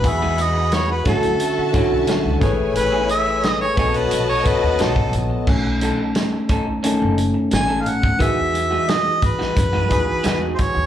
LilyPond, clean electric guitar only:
\new Staff \with { instrumentName = "Clean electric guitar" } { \time 4/4 \key e \major \tempo 4 = 88 r16 <gis dis' fis'>16 r4 <fis cis' e'>16 r8. <fis cis' e'>16 r16 <fis cis' fis'>8 r8 | r16 <b cis' gis'>16 r4 <cis' dis' a'>16 r8. <cis' dis' a'>16 r16 <cis' dis' b'>8 r8 | r8 <cis' dis' a'>16 r8. <cis' dis' a'>16 r16 <cis' dis' a'>8 r8. <cis' dis' a'>16 r8 | <gis dis' fis'>16 r8 <gis dis' fis'>16 r8. <gis dis' fis'>16 r16 <gis dis' fis'>16 r8 <gis dis' fis'>8 r8 | }